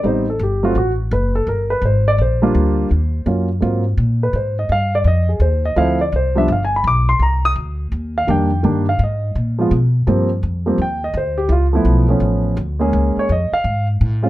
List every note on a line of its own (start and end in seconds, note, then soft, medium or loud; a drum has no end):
0.03 0.38 A1 medium
0.03 0.24 G3 medium
0.03 0.25 B3 soft
0.03 0.25 C4 medium
0.03 0.25 D#4 medium
0.03 0.27 C5 medium
0.30 0.40 A4 medium
0.39 0.74 G1 medium
0.39 0.64 G4 medium
0.63 0.74 F#3 medium
0.63 0.74 A3 medium
0.63 0.75 C4 medium
0.63 0.76 F4 medium
0.63 0.75 F#4 medium
0.75 1.10 A1 medium
0.75 0.91 F#4 medium
1.11 1.46 F#1 medium
1.11 1.35 B4 medium
1.35 1.47 A4 medium
1.47 1.81 G1 medium
1.47 1.70 A#4 medium
1.70 1.83 B4 medium
1.82 2.17 G#1 medium
1.82 2.07 C5 medium
2.08 2.19 D5 loud
2.18 2.53 A#1 medium
2.18 3.24 C5 medium
2.42 2.88 G3 medium
2.42 2.88 A#3 medium
2.42 2.88 D4 medium
2.42 2.89 F4 medium
2.55 2.89 D2 medium
2.91 3.26 D#2 medium
3.26 3.61 F#2 medium
3.26 3.47 F#3 soft
3.26 3.47 A#3 soft
3.26 3.48 C#4 soft
3.26 3.48 F4 medium
3.61 3.97 G#2 medium
3.61 3.82 F#3 medium
3.61 3.83 A#3 medium
3.61 3.83 C4 medium
3.61 3.83 F4 medium
3.97 4.33 A#2 medium
4.23 4.35 B4 medium
4.33 4.68 G#2 medium
4.33 4.58 C5 medium
4.59 4.70 D#5 medium
4.69 5.04 G2 medium
4.69 4.94 F5 medium
4.95 5.06 D5 medium
5.04 5.39 F2 medium
5.04 5.29 D#5 medium
5.29 5.41 G#4 soft
5.40 5.75 D#2 medium
5.40 5.64 C5 medium
5.65 5.77 D#5 medium
5.76 6.12 D2 medium
5.76 5.98 F3 medium
5.76 5.98 A3 medium
5.76 5.98 C4 medium
5.76 5.99 E4 medium
5.76 6.00 F5 medium
6.01 6.13 D5 medium
6.12 6.47 C2 medium
6.12 6.37 C5 medium
6.35 6.47 F3 medium
6.35 6.47 G3 medium
6.35 6.48 B3 medium
6.35 6.48 D4 medium
6.35 6.49 E5 medium
6.48 6.83 G1 medium
6.52 6.62 F5 medium
6.65 6.74 G#5 medium
6.76 6.86 B5 medium
6.84 7.19 B1 medium
6.84 7.09 D6 medium
7.09 7.21 C6 medium
7.19 7.55 C2 medium
7.19 7.44 A#5 medium
7.45 7.52 D#6 loud
7.56 7.91 D2 medium
7.92 8.27 D#2 medium
8.18 8.29 F5 medium
8.27 8.63 F2 medium
8.27 8.49 D#3 medium
8.27 8.49 G3 medium
8.27 8.49 A#3 medium
8.27 8.49 D4 medium
8.27 8.84 G5 medium
8.63 8.99 G2 medium
8.63 8.84 D#3 medium
8.63 8.85 G3 medium
8.63 8.85 A#3 medium
8.63 8.85 D4 medium
8.89 9.00 F5 medium
8.99 9.34 G#2 medium
9.04 9.35 D#5 medium
9.35 9.70 A#2 medium
9.59 9.70 F3 medium
9.59 9.70 G#3 medium
9.59 9.71 B3 medium
9.59 9.71 F4 medium
9.71 10.06 B2 medium
10.07 10.42 G2 medium
10.07 10.28 F3 medium
10.07 10.28 G3 medium
10.07 10.28 A#3 medium
10.07 10.29 C4 medium
10.43 10.78 F2 medium
10.66 10.77 F3 medium
10.66 10.78 G3 medium
10.66 10.78 A#3 medium
10.66 10.78 C4 medium
10.78 11.13 D#2 medium
10.78 11.03 G5 medium
11.04 11.15 D#5 medium
11.14 11.48 D2 medium
11.14 11.39 C5 medium
11.38 11.50 G4 medium
11.49 11.84 C#2 medium
11.49 11.51 E4 medium
11.49 11.66 F4 medium
11.73 12.07 F3 medium
11.73 12.07 A3 medium
11.73 12.07 B3 medium
11.73 12.08 E4 medium
11.85 12.20 B1 medium
12.09 12.55 F3 medium
12.09 12.55 A3 medium
12.09 12.55 B3 medium
12.09 12.55 C#4 medium
12.20 12.56 A1 medium
12.57 12.92 D2 medium
12.79 13.26 G#3 medium
12.79 13.26 A#3 medium
12.79 13.26 C#4 medium
12.79 13.27 G#4 medium
12.93 13.15 C#2 medium
13.16 13.30 C#5 medium
13.16 muted upright bass stroke soft
13.29 13.51 F2 medium
13.29 13.53 D#5 medium
13.52 13.86 F5 medium
13.52 muted upright bass stroke soft
13.64 13.99 G#2 medium
14.01 14.29 A2 medium
14.23 14.29 G#3 medium
14.23 14.29 C4 medium
14.23 14.29 C#4 medium
14.23 14.29 F4 medium